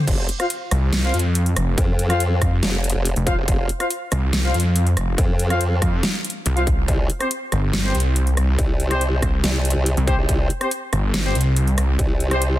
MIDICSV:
0, 0, Header, 1, 5, 480
1, 0, Start_track
1, 0, Tempo, 425532
1, 85, Time_signature, 4, 2, 24, 8
1, 14205, End_track
2, 0, Start_track
2, 0, Title_t, "Brass ensemble"
2, 0, Program_c, 0, 61
2, 448, Note_on_c, 0, 65, 83
2, 448, Note_on_c, 0, 72, 76
2, 448, Note_on_c, 0, 77, 88
2, 524, Note_off_c, 0, 65, 0
2, 524, Note_off_c, 0, 72, 0
2, 524, Note_off_c, 0, 77, 0
2, 1168, Note_on_c, 0, 65, 82
2, 1168, Note_on_c, 0, 72, 74
2, 1168, Note_on_c, 0, 77, 90
2, 1290, Note_off_c, 0, 65, 0
2, 1290, Note_off_c, 0, 72, 0
2, 1290, Note_off_c, 0, 77, 0
2, 2368, Note_on_c, 0, 65, 99
2, 2368, Note_on_c, 0, 72, 91
2, 2368, Note_on_c, 0, 77, 111
2, 2490, Note_off_c, 0, 65, 0
2, 2490, Note_off_c, 0, 72, 0
2, 2490, Note_off_c, 0, 77, 0
2, 3684, Note_on_c, 0, 65, 100
2, 3684, Note_on_c, 0, 72, 93
2, 3685, Note_on_c, 0, 77, 109
2, 3765, Note_off_c, 0, 65, 0
2, 3765, Note_off_c, 0, 72, 0
2, 3765, Note_off_c, 0, 77, 0
2, 4288, Note_on_c, 0, 65, 82
2, 4288, Note_on_c, 0, 72, 74
2, 4288, Note_on_c, 0, 77, 92
2, 4364, Note_off_c, 0, 65, 0
2, 4364, Note_off_c, 0, 72, 0
2, 4364, Note_off_c, 0, 77, 0
2, 5008, Note_on_c, 0, 65, 81
2, 5008, Note_on_c, 0, 72, 74
2, 5008, Note_on_c, 0, 77, 93
2, 5130, Note_off_c, 0, 65, 0
2, 5130, Note_off_c, 0, 72, 0
2, 5130, Note_off_c, 0, 77, 0
2, 6207, Note_on_c, 0, 65, 96
2, 6207, Note_on_c, 0, 72, 89
2, 6207, Note_on_c, 0, 77, 110
2, 6329, Note_off_c, 0, 72, 0
2, 6329, Note_off_c, 0, 77, 0
2, 6330, Note_off_c, 0, 65, 0
2, 7407, Note_on_c, 0, 65, 99
2, 7407, Note_on_c, 0, 72, 89
2, 7407, Note_on_c, 0, 77, 106
2, 7483, Note_off_c, 0, 65, 0
2, 7483, Note_off_c, 0, 72, 0
2, 7483, Note_off_c, 0, 77, 0
2, 8127, Note_on_c, 0, 60, 82
2, 8127, Note_on_c, 0, 67, 75
2, 8128, Note_on_c, 0, 72, 92
2, 8204, Note_off_c, 0, 60, 0
2, 8204, Note_off_c, 0, 67, 0
2, 8204, Note_off_c, 0, 72, 0
2, 8847, Note_on_c, 0, 60, 80
2, 8847, Note_on_c, 0, 67, 74
2, 8847, Note_on_c, 0, 72, 89
2, 8969, Note_off_c, 0, 60, 0
2, 8969, Note_off_c, 0, 67, 0
2, 8969, Note_off_c, 0, 72, 0
2, 10048, Note_on_c, 0, 60, 98
2, 10048, Note_on_c, 0, 67, 92
2, 10048, Note_on_c, 0, 72, 110
2, 10169, Note_off_c, 0, 60, 0
2, 10170, Note_off_c, 0, 67, 0
2, 10170, Note_off_c, 0, 72, 0
2, 11365, Note_on_c, 0, 60, 97
2, 11365, Note_on_c, 0, 67, 91
2, 11365, Note_on_c, 0, 72, 107
2, 11445, Note_off_c, 0, 60, 0
2, 11445, Note_off_c, 0, 67, 0
2, 11445, Note_off_c, 0, 72, 0
2, 11969, Note_on_c, 0, 60, 80
2, 11969, Note_on_c, 0, 67, 74
2, 11969, Note_on_c, 0, 72, 92
2, 12044, Note_off_c, 0, 60, 0
2, 12044, Note_off_c, 0, 67, 0
2, 12044, Note_off_c, 0, 72, 0
2, 12688, Note_on_c, 0, 60, 82
2, 12688, Note_on_c, 0, 67, 76
2, 12688, Note_on_c, 0, 72, 90
2, 12810, Note_off_c, 0, 60, 0
2, 12810, Note_off_c, 0, 67, 0
2, 12810, Note_off_c, 0, 72, 0
2, 13888, Note_on_c, 0, 60, 98
2, 13888, Note_on_c, 0, 67, 92
2, 13888, Note_on_c, 0, 72, 112
2, 14010, Note_off_c, 0, 60, 0
2, 14010, Note_off_c, 0, 67, 0
2, 14010, Note_off_c, 0, 72, 0
2, 14205, End_track
3, 0, Start_track
3, 0, Title_t, "Detuned saw bass"
3, 0, Program_c, 1, 39
3, 805, Note_on_c, 1, 36, 102
3, 1266, Note_off_c, 1, 36, 0
3, 1285, Note_on_c, 1, 41, 98
3, 1746, Note_off_c, 1, 41, 0
3, 1765, Note_on_c, 1, 29, 100
3, 1986, Note_off_c, 1, 29, 0
3, 2725, Note_on_c, 1, 41, 103
3, 2946, Note_off_c, 1, 41, 0
3, 3569, Note_on_c, 1, 29, 97
3, 3789, Note_off_c, 1, 29, 0
3, 4645, Note_on_c, 1, 36, 99
3, 5106, Note_off_c, 1, 36, 0
3, 5125, Note_on_c, 1, 41, 99
3, 5586, Note_off_c, 1, 41, 0
3, 5605, Note_on_c, 1, 29, 98
3, 5826, Note_off_c, 1, 29, 0
3, 6565, Note_on_c, 1, 41, 101
3, 6786, Note_off_c, 1, 41, 0
3, 7284, Note_on_c, 1, 36, 99
3, 7746, Note_off_c, 1, 36, 0
3, 8485, Note_on_c, 1, 31, 100
3, 8946, Note_off_c, 1, 31, 0
3, 8966, Note_on_c, 1, 36, 101
3, 9426, Note_off_c, 1, 36, 0
3, 9445, Note_on_c, 1, 36, 99
3, 9666, Note_off_c, 1, 36, 0
3, 10405, Note_on_c, 1, 36, 102
3, 10626, Note_off_c, 1, 36, 0
3, 11248, Note_on_c, 1, 36, 98
3, 11468, Note_off_c, 1, 36, 0
3, 12324, Note_on_c, 1, 31, 102
3, 12786, Note_off_c, 1, 31, 0
3, 12804, Note_on_c, 1, 36, 101
3, 13266, Note_off_c, 1, 36, 0
3, 13285, Note_on_c, 1, 36, 102
3, 13506, Note_off_c, 1, 36, 0
3, 14205, End_track
4, 0, Start_track
4, 0, Title_t, "Wobble bass"
4, 0, Program_c, 2, 39
4, 85, Note_on_c, 2, 29, 99
4, 306, Note_off_c, 2, 29, 0
4, 2004, Note_on_c, 2, 41, 98
4, 2706, Note_off_c, 2, 41, 0
4, 2965, Note_on_c, 2, 29, 100
4, 3308, Note_off_c, 2, 29, 0
4, 3328, Note_on_c, 2, 29, 104
4, 3548, Note_off_c, 2, 29, 0
4, 3809, Note_on_c, 2, 29, 101
4, 3906, Note_off_c, 2, 29, 0
4, 3925, Note_on_c, 2, 29, 99
4, 4146, Note_off_c, 2, 29, 0
4, 5845, Note_on_c, 2, 41, 97
4, 6546, Note_off_c, 2, 41, 0
4, 7764, Note_on_c, 2, 36, 100
4, 7986, Note_off_c, 2, 36, 0
4, 9685, Note_on_c, 2, 36, 101
4, 10386, Note_off_c, 2, 36, 0
4, 10645, Note_on_c, 2, 36, 101
4, 10988, Note_off_c, 2, 36, 0
4, 11008, Note_on_c, 2, 36, 103
4, 11228, Note_off_c, 2, 36, 0
4, 11489, Note_on_c, 2, 36, 99
4, 11586, Note_off_c, 2, 36, 0
4, 11605, Note_on_c, 2, 36, 99
4, 11826, Note_off_c, 2, 36, 0
4, 13524, Note_on_c, 2, 36, 101
4, 14205, Note_off_c, 2, 36, 0
4, 14205, End_track
5, 0, Start_track
5, 0, Title_t, "Drums"
5, 84, Note_on_c, 9, 36, 117
5, 85, Note_on_c, 9, 42, 85
5, 85, Note_on_c, 9, 49, 76
5, 197, Note_off_c, 9, 36, 0
5, 198, Note_off_c, 9, 42, 0
5, 198, Note_off_c, 9, 49, 0
5, 325, Note_on_c, 9, 42, 54
5, 438, Note_off_c, 9, 42, 0
5, 449, Note_on_c, 9, 37, 59
5, 449, Note_on_c, 9, 42, 40
5, 561, Note_off_c, 9, 37, 0
5, 561, Note_off_c, 9, 42, 0
5, 565, Note_on_c, 9, 42, 89
5, 678, Note_off_c, 9, 42, 0
5, 805, Note_on_c, 9, 37, 64
5, 805, Note_on_c, 9, 42, 55
5, 918, Note_off_c, 9, 37, 0
5, 918, Note_off_c, 9, 42, 0
5, 1045, Note_on_c, 9, 38, 122
5, 1045, Note_on_c, 9, 42, 85
5, 1157, Note_off_c, 9, 38, 0
5, 1157, Note_off_c, 9, 42, 0
5, 1285, Note_on_c, 9, 42, 53
5, 1347, Note_off_c, 9, 42, 0
5, 1347, Note_on_c, 9, 42, 69
5, 1460, Note_off_c, 9, 42, 0
5, 1525, Note_on_c, 9, 42, 84
5, 1638, Note_off_c, 9, 42, 0
5, 1648, Note_on_c, 9, 42, 38
5, 1761, Note_off_c, 9, 42, 0
5, 1765, Note_on_c, 9, 37, 65
5, 1765, Note_on_c, 9, 42, 58
5, 1878, Note_off_c, 9, 37, 0
5, 1878, Note_off_c, 9, 42, 0
5, 2004, Note_on_c, 9, 36, 125
5, 2005, Note_on_c, 9, 42, 85
5, 2117, Note_off_c, 9, 36, 0
5, 2118, Note_off_c, 9, 42, 0
5, 2245, Note_on_c, 9, 42, 57
5, 2358, Note_off_c, 9, 42, 0
5, 2368, Note_on_c, 9, 37, 55
5, 2368, Note_on_c, 9, 42, 40
5, 2481, Note_off_c, 9, 37, 0
5, 2481, Note_off_c, 9, 42, 0
5, 2485, Note_on_c, 9, 42, 90
5, 2598, Note_off_c, 9, 42, 0
5, 2724, Note_on_c, 9, 36, 64
5, 2724, Note_on_c, 9, 37, 64
5, 2724, Note_on_c, 9, 42, 57
5, 2837, Note_off_c, 9, 36, 0
5, 2837, Note_off_c, 9, 37, 0
5, 2837, Note_off_c, 9, 42, 0
5, 2964, Note_on_c, 9, 38, 127
5, 2964, Note_on_c, 9, 42, 84
5, 3077, Note_off_c, 9, 38, 0
5, 3077, Note_off_c, 9, 42, 0
5, 3204, Note_on_c, 9, 42, 53
5, 3266, Note_off_c, 9, 42, 0
5, 3266, Note_on_c, 9, 42, 70
5, 3379, Note_off_c, 9, 42, 0
5, 3445, Note_on_c, 9, 42, 87
5, 3558, Note_off_c, 9, 42, 0
5, 3568, Note_on_c, 9, 42, 39
5, 3681, Note_off_c, 9, 42, 0
5, 3684, Note_on_c, 9, 36, 112
5, 3685, Note_on_c, 9, 42, 59
5, 3797, Note_off_c, 9, 36, 0
5, 3798, Note_off_c, 9, 42, 0
5, 3925, Note_on_c, 9, 36, 127
5, 3925, Note_on_c, 9, 42, 83
5, 4037, Note_off_c, 9, 36, 0
5, 4038, Note_off_c, 9, 42, 0
5, 4165, Note_on_c, 9, 42, 56
5, 4278, Note_off_c, 9, 42, 0
5, 4288, Note_on_c, 9, 37, 53
5, 4288, Note_on_c, 9, 42, 40
5, 4401, Note_off_c, 9, 37, 0
5, 4401, Note_off_c, 9, 42, 0
5, 4404, Note_on_c, 9, 42, 88
5, 4517, Note_off_c, 9, 42, 0
5, 4644, Note_on_c, 9, 37, 60
5, 4644, Note_on_c, 9, 42, 54
5, 4757, Note_off_c, 9, 37, 0
5, 4757, Note_off_c, 9, 42, 0
5, 4885, Note_on_c, 9, 38, 127
5, 4885, Note_on_c, 9, 42, 84
5, 4998, Note_off_c, 9, 38, 0
5, 4998, Note_off_c, 9, 42, 0
5, 5125, Note_on_c, 9, 42, 52
5, 5186, Note_off_c, 9, 42, 0
5, 5186, Note_on_c, 9, 42, 68
5, 5299, Note_off_c, 9, 42, 0
5, 5365, Note_on_c, 9, 42, 84
5, 5478, Note_off_c, 9, 42, 0
5, 5489, Note_on_c, 9, 42, 38
5, 5601, Note_off_c, 9, 42, 0
5, 5605, Note_on_c, 9, 37, 63
5, 5605, Note_on_c, 9, 42, 56
5, 5718, Note_off_c, 9, 37, 0
5, 5718, Note_off_c, 9, 42, 0
5, 5845, Note_on_c, 9, 36, 123
5, 5845, Note_on_c, 9, 42, 82
5, 5957, Note_off_c, 9, 36, 0
5, 5958, Note_off_c, 9, 42, 0
5, 6085, Note_on_c, 9, 42, 52
5, 6198, Note_off_c, 9, 42, 0
5, 6208, Note_on_c, 9, 37, 52
5, 6208, Note_on_c, 9, 42, 37
5, 6321, Note_off_c, 9, 37, 0
5, 6321, Note_off_c, 9, 42, 0
5, 6324, Note_on_c, 9, 42, 83
5, 6437, Note_off_c, 9, 42, 0
5, 6564, Note_on_c, 9, 36, 64
5, 6564, Note_on_c, 9, 37, 59
5, 6564, Note_on_c, 9, 42, 52
5, 6677, Note_off_c, 9, 36, 0
5, 6677, Note_off_c, 9, 37, 0
5, 6677, Note_off_c, 9, 42, 0
5, 6804, Note_on_c, 9, 38, 127
5, 6804, Note_on_c, 9, 42, 82
5, 6917, Note_off_c, 9, 38, 0
5, 6917, Note_off_c, 9, 42, 0
5, 7044, Note_on_c, 9, 42, 51
5, 7106, Note_off_c, 9, 42, 0
5, 7106, Note_on_c, 9, 42, 65
5, 7219, Note_off_c, 9, 42, 0
5, 7284, Note_on_c, 9, 42, 81
5, 7397, Note_off_c, 9, 42, 0
5, 7408, Note_on_c, 9, 42, 37
5, 7520, Note_off_c, 9, 42, 0
5, 7524, Note_on_c, 9, 36, 114
5, 7524, Note_on_c, 9, 42, 54
5, 7637, Note_off_c, 9, 36, 0
5, 7637, Note_off_c, 9, 42, 0
5, 7764, Note_on_c, 9, 36, 119
5, 7764, Note_on_c, 9, 42, 76
5, 7877, Note_off_c, 9, 36, 0
5, 7877, Note_off_c, 9, 42, 0
5, 8005, Note_on_c, 9, 42, 51
5, 8117, Note_off_c, 9, 42, 0
5, 8127, Note_on_c, 9, 37, 54
5, 8127, Note_on_c, 9, 42, 36
5, 8240, Note_off_c, 9, 37, 0
5, 8240, Note_off_c, 9, 42, 0
5, 8244, Note_on_c, 9, 42, 81
5, 8357, Note_off_c, 9, 42, 0
5, 8484, Note_on_c, 9, 37, 58
5, 8484, Note_on_c, 9, 42, 50
5, 8597, Note_off_c, 9, 37, 0
5, 8597, Note_off_c, 9, 42, 0
5, 8724, Note_on_c, 9, 38, 126
5, 8724, Note_on_c, 9, 42, 79
5, 8837, Note_off_c, 9, 38, 0
5, 8837, Note_off_c, 9, 42, 0
5, 8965, Note_on_c, 9, 42, 49
5, 9025, Note_off_c, 9, 42, 0
5, 9025, Note_on_c, 9, 42, 64
5, 9138, Note_off_c, 9, 42, 0
5, 9204, Note_on_c, 9, 42, 79
5, 9317, Note_off_c, 9, 42, 0
5, 9328, Note_on_c, 9, 42, 36
5, 9440, Note_off_c, 9, 42, 0
5, 9444, Note_on_c, 9, 37, 61
5, 9444, Note_on_c, 9, 42, 52
5, 9557, Note_off_c, 9, 37, 0
5, 9557, Note_off_c, 9, 42, 0
5, 9685, Note_on_c, 9, 36, 117
5, 9685, Note_on_c, 9, 42, 78
5, 9797, Note_off_c, 9, 36, 0
5, 9797, Note_off_c, 9, 42, 0
5, 9924, Note_on_c, 9, 42, 51
5, 10037, Note_off_c, 9, 42, 0
5, 10048, Note_on_c, 9, 37, 53
5, 10048, Note_on_c, 9, 42, 37
5, 10161, Note_off_c, 9, 37, 0
5, 10161, Note_off_c, 9, 42, 0
5, 10165, Note_on_c, 9, 42, 81
5, 10278, Note_off_c, 9, 42, 0
5, 10405, Note_on_c, 9, 36, 61
5, 10406, Note_on_c, 9, 37, 60
5, 10406, Note_on_c, 9, 42, 49
5, 10517, Note_off_c, 9, 36, 0
5, 10518, Note_off_c, 9, 37, 0
5, 10518, Note_off_c, 9, 42, 0
5, 10645, Note_on_c, 9, 38, 116
5, 10645, Note_on_c, 9, 42, 80
5, 10758, Note_off_c, 9, 38, 0
5, 10758, Note_off_c, 9, 42, 0
5, 10885, Note_on_c, 9, 42, 49
5, 10947, Note_off_c, 9, 42, 0
5, 10947, Note_on_c, 9, 42, 64
5, 11059, Note_off_c, 9, 42, 0
5, 11125, Note_on_c, 9, 42, 81
5, 11238, Note_off_c, 9, 42, 0
5, 11249, Note_on_c, 9, 42, 35
5, 11361, Note_off_c, 9, 42, 0
5, 11365, Note_on_c, 9, 36, 107
5, 11365, Note_on_c, 9, 42, 52
5, 11477, Note_off_c, 9, 36, 0
5, 11478, Note_off_c, 9, 42, 0
5, 11605, Note_on_c, 9, 36, 116
5, 11605, Note_on_c, 9, 42, 80
5, 11717, Note_off_c, 9, 36, 0
5, 11718, Note_off_c, 9, 42, 0
5, 11846, Note_on_c, 9, 42, 53
5, 11958, Note_off_c, 9, 42, 0
5, 11968, Note_on_c, 9, 37, 56
5, 11968, Note_on_c, 9, 42, 39
5, 12081, Note_off_c, 9, 37, 0
5, 12081, Note_off_c, 9, 42, 0
5, 12085, Note_on_c, 9, 42, 85
5, 12198, Note_off_c, 9, 42, 0
5, 12326, Note_on_c, 9, 37, 63
5, 12326, Note_on_c, 9, 42, 50
5, 12439, Note_off_c, 9, 37, 0
5, 12439, Note_off_c, 9, 42, 0
5, 12565, Note_on_c, 9, 38, 119
5, 12565, Note_on_c, 9, 42, 80
5, 12678, Note_off_c, 9, 38, 0
5, 12678, Note_off_c, 9, 42, 0
5, 12805, Note_on_c, 9, 42, 51
5, 12867, Note_off_c, 9, 42, 0
5, 12867, Note_on_c, 9, 42, 64
5, 12980, Note_off_c, 9, 42, 0
5, 13045, Note_on_c, 9, 42, 79
5, 13158, Note_off_c, 9, 42, 0
5, 13169, Note_on_c, 9, 42, 37
5, 13282, Note_off_c, 9, 42, 0
5, 13285, Note_on_c, 9, 37, 67
5, 13285, Note_on_c, 9, 42, 55
5, 13398, Note_off_c, 9, 37, 0
5, 13398, Note_off_c, 9, 42, 0
5, 13524, Note_on_c, 9, 36, 114
5, 13525, Note_on_c, 9, 42, 84
5, 13637, Note_off_c, 9, 36, 0
5, 13638, Note_off_c, 9, 42, 0
5, 13765, Note_on_c, 9, 42, 54
5, 13878, Note_off_c, 9, 42, 0
5, 13888, Note_on_c, 9, 37, 58
5, 13888, Note_on_c, 9, 42, 39
5, 14001, Note_off_c, 9, 37, 0
5, 14001, Note_off_c, 9, 42, 0
5, 14005, Note_on_c, 9, 42, 84
5, 14118, Note_off_c, 9, 42, 0
5, 14205, End_track
0, 0, End_of_file